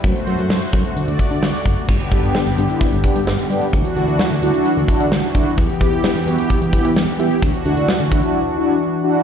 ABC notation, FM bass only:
X:1
M:4/4
L:1/16
Q:1/4=130
K:Dmix
V:1 name="FM bass" clef=bass
F,, z F,, F,, F,, z F,, z D,, D,, z D, D,, z F,,, z | G,,, z G,,, G,,, z G,,, G,,, z2 G,,, z G,, G,,, z G,, z | D,, z D,, D,, z D,, D,, z2 D,, z D, D,, z D, z | E,, z E,, E,, z E,, E,, z2 E,, z E, E,, z E, z |
D,, z D,, D,, z D,, D,, z8 z |]